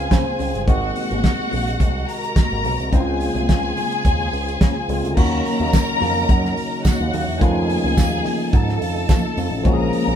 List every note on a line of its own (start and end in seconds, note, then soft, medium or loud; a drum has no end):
0.00 0.63 C#3 medium
0.00 0.65 C#3 medium
0.00 0.63 G#3 medium
0.00 0.64 C4 medium
0.00 0.65 C4 medium
0.00 0.64 F4 medium
0.00 0.65 F4 medium
0.00 0.64 G#4 medium
0.00 0.69 F5 medium
0.00 0.63 G#5 medium
0.11 0.24 C#3 loud
0.11 0.64 C5 medium
0.11 kick loud
0.11 snare loud
0.11 closed hi-hat medium
0.11 high conga medium
0.26 muted conga soft
0.39 0.52 C#2 medium
0.39 open hi-hat medium
0.39 low conga medium
0.54 0.68 G1 medium
0.54 closed hi-hat soft
0.66 0.91 G#1 medium
0.66 2.90 C3 medium
0.66 2.88 D#3 medium
0.66 2.88 G#3 medium
0.66 2.91 G#3 medium
0.66 2.88 C4 medium
0.66 2.90 F#4 medium
0.66 2.89 F#4 medium
0.66 2.06 F#4 medium
0.66 2.06 F#5 medium
0.66 kick loud
0.66 closed hi-hat medium
0.66 low conga medium
0.82 muted conga soft
0.96 open hi-hat medium
0.96 high conga medium
1.11 1.22 G#1 loud
1.11 closed hi-hat soft
1.11 high conga medium
1.24 kick medium
1.24 snare loud
1.24 closed hi-hat medium
1.38 high conga medium
1.51 1.76 A#1 loud
1.51 open hi-hat medium
1.51 high conga medium
1.51 low conga medium
1.68 closed hi-hat medium
1.80 2.03 C2 medium
1.80 kick loud
1.80 closed hi-hat medium
1.80 muted conga soft
2.08 2.91 A#4 medium
2.08 2.91 A#5 medium
2.08 open hi-hat medium
2.24 closed hi-hat medium
2.36 kick loud
2.36 snare loud
2.36 closed hi-hat medium
2.36 high conga medium
2.52 2.62 G#1 medium
2.64 2.77 B1 medium
2.64 open hi-hat medium
2.64 low conga medium
2.80 2.90 C2 medium
2.80 closed hi-hat medium
2.90 3.28 C#2 medium
2.90 4.84 C#3 medium
2.90 5.15 C#3 medium
2.90 4.84 G#3 medium
2.90 4.85 C4 medium
2.90 5.15 C4 medium
2.90 3.00 E4 medium
2.90 5.15 F4 medium
2.90 5.13 G#4 medium
2.90 5.13 G#5 medium
2.90 kick loud
2.90 closed hi-hat medium
2.90 low conga medium
3.00 4.88 F4 medium
3.20 open hi-hat medium
3.20 high conga medium
3.35 3.46 C2 medium
3.35 closed hi-hat soft
3.35 high conga medium
3.49 3.72 C#2 medium
3.49 kick medium
3.49 snare loud
3.49 closed hi-hat medium
3.64 high conga medium
3.77 open hi-hat medium
3.77 high conga medium
3.77 low conga medium
3.92 closed hi-hat medium
4.05 4.28 D#2 medium
4.05 kick loud
4.05 closed hi-hat medium
4.05 muted conga soft
4.20 muted conga soft
4.33 4.56 C#2 medium
4.33 open hi-hat soft
4.49 closed hi-hat soft
4.61 4.73 C#3 medium
4.61 kick loud
4.61 snare loud
4.61 closed hi-hat medium
4.61 muted conga soft
4.61 high conga medium
4.77 muted conga soft
4.88 5.01 C#2 medium
4.88 5.17 C#3 medium
4.88 5.17 G#3 medium
4.88 5.17 C4 medium
4.88 5.17 F4 medium
4.88 open hi-hat medium
4.88 low conga medium
5.04 5.15 D2 medium
5.04 closed hi-hat soft
5.15 5.40 D#2 medium
5.15 10.16 C#3 medium
5.15 7.36 D#3 medium
5.15 7.37 F#3 medium
5.15 7.39 F#3 medium
5.15 7.37 A#3 medium
5.15 7.38 C#4 medium
5.15 9.61 D#4 medium
5.15 7.38 F#4 medium
5.15 6.82 A#4 medium
5.15 6.82 A#5 medium
5.15 kick loud
5.15 crash loud
5.15 muted conga soft
5.15 low conga medium
5.45 open hi-hat medium
5.45 high conga medium
5.60 5.71 D#2 loud
5.60 high conga medium
5.73 kick loud
5.73 snare loud
5.73 closed hi-hat medium
5.73 tambourine medium
5.73 muted conga soft
5.88 muted conga soft
6.00 6.24 F2 loud
6.00 open hi-hat medium
6.00 high conga medium
6.00 low conga medium
6.29 6.52 F#2 loud
6.29 kick loud
6.29 closed hi-hat medium
6.45 snare soft
6.57 open hi-hat medium
6.85 7.41 F#4 medium
6.85 7.41 F#5 medium
6.85 kick loud
6.85 snare loud
6.85 closed hi-hat medium
6.85 tambourine medium
6.85 high conga medium
7.00 7.11 D#2 loud
7.00 muted conga soft
7.13 7.26 D#2 loud
7.13 open hi-hat medium
7.13 low conga medium
7.28 7.39 E2 medium
7.39 7.77 F2 loud
7.39 9.60 D#3 medium
7.39 9.61 F3 medium
7.39 9.61 A3 medium
7.39 9.64 A3 medium
7.39 9.61 C#4 medium
7.39 9.62 F4 medium
7.39 8.52 G#4 medium
7.39 8.52 G#5 medium
7.39 kick loud
7.39 closed hi-hat medium
7.39 muted conga soft
7.39 low conga medium
7.68 open hi-hat medium
7.68 high conga medium
7.84 7.95 C#2 loud
7.84 high conga medium
7.97 8.21 D#2 medium
7.97 kick loud
7.97 snare loud
7.97 closed hi-hat medium
7.97 tambourine medium
7.97 muted conga soft
8.25 open hi-hat medium
8.25 high conga medium
8.25 low conga medium
8.52 8.76 G#2 loud
8.52 9.63 A4 medium
8.52 9.63 A5 medium
8.52 kick loud
8.52 closed hi-hat medium
8.68 snare soft
8.68 muted conga soft
8.81 9.04 F2 medium
8.81 open hi-hat medium
9.09 9.22 F3 medium
9.09 kick loud
9.09 snare loud
9.09 closed hi-hat medium
9.09 tambourine medium
9.09 muted conga soft
9.09 high conga medium
9.25 muted conga soft
9.37 9.49 F2 medium
9.37 open hi-hat medium
9.37 low conga medium
9.51 9.63 A1 medium
9.63 9.89 A#1 loud
9.63 10.16 F3 medium
9.63 10.16 G#3 medium
9.63 10.16 A#3 medium
9.63 10.16 C#4 medium
9.63 9.73 F#4 medium
9.63 10.16 G#4 medium
9.63 10.16 A#4 medium
9.63 10.16 A#5 medium
9.63 kick loud
9.63 closed hi-hat medium
9.63 low conga medium
9.73 10.16 G#4 medium
9.80 muted conga soft
9.93 open hi-hat medium
9.93 high conga medium
10.07 10.16 A#1 loud
10.07 high conga medium